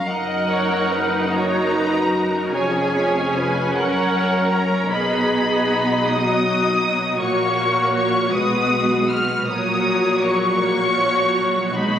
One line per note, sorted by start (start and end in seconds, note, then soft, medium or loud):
0.05 2.50 F#1 soft
0.05 2.50 F#2 soft
0.05 2.49 D#4 medium
0.05 1.28 A#4 soft
0.05 1.29 A#4 soft
0.05 0.46 D#5 soft
0.05 1.33 F#5 medium
0.49 0.92 C#5 soft
0.91 1.33 B4 medium
1.31 2.52 F#4 soft
1.31 2.13 A#4 soft
1.31 1.73 C#5 soft
1.31 2.54 A#5 medium
1.75 2.14 B4 medium
2.14 2.54 A#4 medium
2.53 3.76 F1 medium
2.53 3.75 F2 medium
2.53 4.91 C#4 soft
2.53 3.75 G#4 soft
2.53 2.95 C#5 soft
2.53 3.73 G#5 medium
2.97 3.36 C#5 soft
3.39 3.77 B4 medium
3.75 4.89 F#1 soft
3.75 4.89 F#2 medium
3.75 4.89 A#4 soft
3.75 4.91 A#4 soft
3.75 4.89 C#5 soft
3.75 4.52 F#5 medium
4.52 4.91 A#5 medium
4.91 7.16 B1 medium
4.91 7.15 B2 medium
4.91 6.04 B3 medium
4.91 7.16 D#4 medium
4.91 6.07 G#4 medium
4.91 7.20 D#5 soft
4.91 6.04 B5 medium
6.06 7.19 F#3 soft
6.06 7.18 F#4 medium
6.06 7.19 D#6 medium
7.19 8.30 A#1 medium
7.19 8.29 A#2 medium
7.19 8.29 A#3 medium
7.19 8.29 F#4 soft
7.19 8.29 F#4 medium
7.19 8.29 C#5 medium
7.19 7.93 C#6 medium
7.95 8.31 C#6 medium
8.30 9.46 B1 medium
8.30 9.46 B2 medium
8.30 9.45 G#3 medium
8.30 9.43 F#4 medium
8.30 9.44 F#4 medium
8.30 9.47 B4 medium
8.30 9.08 D#6 medium
9.09 9.47 F6 medium
9.44 11.71 A#1 medium
9.44 11.71 A#2 medium
9.44 10.57 F#3 medium
9.44 11.70 F#4 medium
9.44 10.61 A#4 medium
9.44 10.60 C#5 soft
9.44 10.21 D#6 medium
10.24 11.68 C#6 medium
10.61 10.99 A#3 medium
10.61 11.75 C#5 medium
10.98 11.36 F3 medium
11.37 11.75 F#3 medium
11.69 11.75 C#6 soft
11.74 11.99 B1 medium
11.74 11.99 B2 medium
11.74 11.99 G#3 medium
11.74 11.99 D#4 medium
11.74 11.99 F#4 medium
11.74 11.99 D#5 soft
11.74 11.99 B5 medium